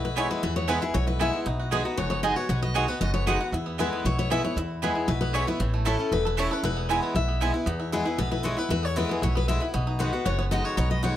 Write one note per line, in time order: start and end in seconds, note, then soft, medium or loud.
0.00 0.26 B1 medium
0.00 0.40 B2 loud
0.00 0.56 B3 medium
0.05 0.16 E4 medium
0.05 0.18 B4 medium
0.16 0.41 E3 medium
0.16 0.42 G#3 loud
0.16 0.25 B3 medium
0.16 0.42 B3 medium
0.16 0.26 E4 medium
0.16 0.29 E4 medium
0.16 0.42 E4 loud
0.16 0.26 B4 medium
0.16 0.30 C#5 medium
0.16 0.26 G#5 loud
0.30 0.66 E4 medium
0.30 0.42 B4 medium
0.43 0.78 E2 medium
0.43 0.92 E2 medium
0.43 0.79 E3 medium
0.43 0.56 B4 medium
0.56 1.72 B3 medium
0.56 0.69 C#5 medium
0.68 0.81 E3 medium
0.68 0.81 G#3 medium
0.68 0.77 B3 medium
0.68 0.81 B3 medium
0.68 0.77 E4 loud
0.68 0.80 E4 medium
0.68 0.81 E4 medium
0.68 0.78 B4 loud
0.68 0.82 B4 loud
0.68 0.78 G#5 loud
0.81 0.95 B3 soft
0.81 0.93 E4 medium
0.81 0.94 E4 medium
0.81 0.95 G#4 medium
0.94 1.29 B1 medium
0.94 1.44 B2 medium
0.94 1.06 E4 medium
0.94 1.07 C#5 loud
1.07 1.19 E4 medium
1.07 1.21 B4 medium
1.19 1.45 E3 medium
1.19 1.45 G#3 medium
1.19 1.29 B3 medium
1.19 1.46 B3 medium
1.19 1.29 E4 medium
1.19 1.32 E4 medium
1.19 1.46 E4 loud
1.19 1.29 B4 loud
1.19 1.39 E5 medium
1.19 1.30 G#5 loud
1.33 1.46 E4 medium
1.46 1.81 B1 medium
1.46 1.95 B2 medium
1.46 1.83 D#4 medium
1.60 1.96 F#4 medium
1.71 1.85 D#3 medium
1.71 1.85 G#3 medium
1.71 1.81 B3 medium
1.71 2.11 B3 medium
1.71 1.85 B3 loud
1.71 1.84 F#4 medium
1.71 1.81 G#4 loud
1.71 1.97 B4 medium
1.71 1.81 D#5 loud
1.71 1.81 G#5 loud
1.85 1.98 B3 soft
1.85 2.21 D#4 medium
1.85 1.97 F#4 medium
1.97 2.33 F#1 medium
1.97 2.47 F#2 medium
1.97 2.34 F#4 medium
1.97 2.09 C#5 loud
2.10 2.62 B3 medium
2.10 2.23 C#5 medium
2.23 2.36 D#3 medium
2.23 2.36 G#3 medium
2.23 2.32 B3 medium
2.23 2.36 B3 medium
2.23 2.60 D#4 medium
2.23 2.35 F#4 medium
2.23 2.33 G#4 medium
2.23 2.36 D#5 medium
2.23 2.33 D#5 medium
2.23 2.33 G#5 loud
2.36 2.50 B3 soft
2.36 2.49 F#4 medium
2.36 2.48 F#4 medium
2.36 2.48 C#5 medium
2.49 2.84 B1 loud
2.49 2.99 B2 medium
2.49 2.74 F#4 medium
2.49 2.62 C#5 medium
2.62 2.88 B3 medium
2.62 2.75 D#5 medium
2.74 2.88 D#3 medium
2.74 2.88 G#3 medium
2.74 2.84 B3 loud
2.74 2.88 B3 medium
2.74 3.00 F#4 medium
2.74 2.87 F#4 medium
2.74 2.84 G#4 medium
2.74 2.88 C#5 medium
2.74 2.84 D#5 loud
2.74 2.85 G#5 loud
2.88 3.14 B3 medium
2.88 3.01 B3 medium
2.88 3.01 F#4 medium
2.88 3.00 B4 medium
3.01 3.36 F#1 medium
3.01 3.51 F#2 medium
3.01 3.38 F#4 medium
3.01 3.13 D#5 loud
3.14 3.66 B3 medium
3.14 3.27 C#5 medium
3.27 3.40 D#3 medium
3.27 3.40 G#3 medium
3.27 3.36 B3 loud
3.27 3.40 B3 loud
3.27 3.53 D#4 medium
3.27 3.39 F#4 loud
3.27 3.36 G#4 medium
3.27 3.36 D#5 loud
3.27 3.45 F#5 medium
3.27 3.37 G#5 medium
3.40 3.54 B3 soft
3.40 3.53 F#4 medium
3.52 3.87 E2 loud
3.52 4.03 E2 medium
3.52 3.79 E4 medium
3.66 3.92 B3 medium
3.78 4.04 E3 medium
3.78 4.04 G#3 medium
3.78 3.88 B3 medium
3.78 4.04 B3 medium
3.78 3.88 E4 loud
3.78 4.05 E4 medium
3.78 4.04 E4 medium
3.78 3.88 B4 medium
3.78 4.06 B4 medium
3.78 3.88 G#5 loud
3.93 4.17 B3 medium
4.05 4.40 B1 medium
4.05 4.54 B2 medium
4.05 4.31 E4 medium
4.05 4.18 C#5 loud
4.19 4.54 B3 medium
4.19 4.31 C#5 medium
4.30 4.44 E3 medium
4.30 4.44 G#3 medium
4.30 4.39 B3 medium
4.30 4.44 B3 medium
4.30 4.40 E4 medium
4.30 4.45 E4 medium
4.30 4.44 E4 loud
4.30 4.40 B4 loud
4.30 4.44 E5 loud
4.30 4.40 G#5 medium
4.44 4.57 B3 soft
4.44 4.57 E4 medium
4.44 4.56 C#5 medium
4.56 4.91 E2 medium
4.56 5.06 E2 loud
4.56 4.95 E4 medium
4.82 5.07 E3 medium
4.82 5.07 G#3 medium
4.82 4.91 B3 medium
4.82 5.19 B3 medium
4.82 5.08 B3 medium
4.82 4.92 E4 medium
4.82 5.08 E4 medium
4.82 5.10 G#4 medium
4.82 4.92 B4 loud
4.82 4.92 G#5 loud
4.95 5.09 E4 medium
5.08 5.43 B1 medium
5.08 5.57 B2 medium
5.08 5.34 E4 medium
5.08 5.20 B4 loud
5.21 5.58 B3 medium
5.21 5.34 B4 medium
5.33 5.47 E3 medium
5.33 5.47 G#3 medium
5.33 5.43 B3 medium
5.33 5.47 B3 medium
5.33 5.43 E4 loud
5.33 5.47 E4 medium
5.33 5.46 E4 loud
5.33 5.43 B4 medium
5.33 5.48 C#5 loud
5.33 5.43 G#5 medium
5.47 5.60 B3 soft
5.47 5.60 E4 medium
5.47 6.12 E4 medium
5.47 5.60 B4 medium
5.60 5.95 A1 loud
5.60 6.09 A2 loud
5.60 7.00 E3 medium
5.74 6.10 A3 medium
5.85 5.98 E3 medium
5.85 5.95 A3 medium
5.85 5.98 A3 medium
5.85 5.99 C#4 loud
5.85 5.95 E4 loud
5.85 5.98 E4 loud
5.85 6.22 A4 medium
5.85 6.11 A4 medium
5.85 5.95 C#5 loud
5.85 5.95 A5 loud
5.99 6.35 C#4 soft
5.99 6.12 C#4 soft
5.99 6.11 E4 medium
6.11 6.46 E1 medium
6.11 6.61 E2 medium
6.11 6.38 E4 medium
6.11 6.25 B4 loud
6.25 6.50 A4 medium
6.25 6.39 B4 medium
6.37 6.50 E3 medium
6.37 6.46 A3 medium
6.37 6.50 A3 loud
6.37 6.51 C#4 loud
6.37 6.47 E4 medium
6.37 6.64 E4 medium
6.37 6.50 E4 loud
6.37 6.47 C#5 loud
6.37 6.53 C#5 medium
6.37 6.47 A5 medium
6.51 6.64 C#4 soft
6.51 6.63 E4 medium
6.51 6.64 A4 medium
6.51 6.64 B4 medium
6.63 6.98 E1 medium
6.63 7.13 E2 loud
6.63 6.88 E4 medium
6.63 7.15 B4 medium
6.76 7.02 B3 medium
6.89 7.14 E3 medium
6.89 7.14 G#3 medium
6.89 6.98 B3 medium
6.89 7.15 B3 loud
6.89 7.15 E4 medium
6.89 6.98 E4 medium
6.89 7.15 E4 medium
6.89 6.99 B4 loud
6.89 6.99 G#5 loud
7.03 7.27 B3 medium
7.15 7.50 B1 medium
7.15 7.40 E4 medium
7.15 7.52 E5 loud
7.28 7.64 B3 medium
7.41 7.54 E3 medium
7.41 7.54 G#3 medium
7.41 7.50 B3 medium
7.41 7.54 B3 loud
7.41 7.50 E4 medium
7.41 7.53 E4 medium
7.41 7.53 E4 loud
7.41 7.50 B4 loud
7.41 7.51 G#5 loud
7.54 7.67 B3 soft
7.54 7.66 E4 medium
7.54 7.67 E4 medium
7.66 8.01 E2 loud
7.66 8.16 E2 loud
7.66 8.18 B3 medium
7.80 7.91 E4 medium
7.92 8.05 E3 medium
7.92 8.05 G#3 loud
7.92 8.06 B3 medium
7.92 8.04 E4 medium
7.92 8.04 E4 loud
7.92 8.17 G#4 medium
8.05 8.19 B3 medium
8.05 8.30 E4 medium
8.05 8.18 E4 medium
8.18 8.53 B1 medium
8.18 8.68 B2 loud
8.18 8.83 B3 medium
8.18 8.30 B4 loud
8.31 8.43 E4 medium
8.31 8.44 B4 medium
8.43 8.56 E3 medium
8.43 8.57 G#3 medium
8.43 8.57 B3 medium
8.43 8.56 E4 medium
8.43 8.55 E4 loud
8.43 8.58 C#5 medium
8.57 8.70 B3 medium
8.57 8.69 E4 medium
8.57 8.70 B4 medium
8.69 9.04 E2 medium
8.69 9.20 E2 medium
8.69 8.95 E4 medium
8.69 8.85 B4 medium
8.83 9.09 B3 medium
8.83 8.97 C#5 medium
8.96 9.21 E3 medium
8.96 9.21 G#3 medium
8.96 9.21 B3 loud
8.96 9.21 E4 medium
8.96 9.09 B4 medium
9.09 9.35 B3 medium
9.09 9.22 G#4 medium
9.22 9.57 B1 medium
9.22 9.47 E4 medium
9.22 9.36 C#5 loud
9.35 9.74 B3 medium
9.35 9.48 B4 medium
9.48 9.61 E3 medium
9.48 9.61 G#3 medium
9.48 9.61 B3 loud
9.48 9.60 E4 medium
9.48 9.59 E4 medium
9.48 9.66 E5 loud
9.60 9.74 B3 medium
9.60 9.73 E4 medium
9.60 9.74 E4 medium
9.74 10.09 B1 medium
9.74 10.23 B2 loud
9.74 10.38 B3 medium
9.87 10.23 D#4 medium
9.99 10.12 D#3 medium
9.99 10.12 G#3 medium
9.99 10.13 B3 loud
9.99 10.11 F#4 medium
9.99 10.12 F#4 medium
9.99 10.27 B4 medium
10.13 10.26 B3 soft
10.13 10.24 F#4 medium
10.13 10.25 F#4 medium
10.25 10.60 F#1 medium
10.25 10.75 F#2 medium
10.25 10.62 F#4 medium
10.25 10.37 C#5 medium
10.39 10.90 B3 medium
10.39 10.44 C#5 medium
10.51 10.76 D#3 medium
10.51 10.76 G#3 loud
10.51 10.77 B3 medium
10.51 10.76 D#4 medium
10.51 10.77 F#4 loud
10.51 10.65 D#5 medium
10.64 11.01 F#4 medium
10.64 10.76 C#5 medium
10.77 11.12 B1 loud
10.77 11.17 B2 loud
10.77 11.13 D#4 medium
10.77 10.90 C#5 medium
10.90 11.16 B3 medium
10.90 11.02 D#5 medium
11.03 11.15 D#3 medium
11.03 11.16 G#3 medium
11.03 11.16 B3 medium
11.03 11.17 F#4 medium
11.03 11.14 F#4 loud
11.03 11.17 C#5 medium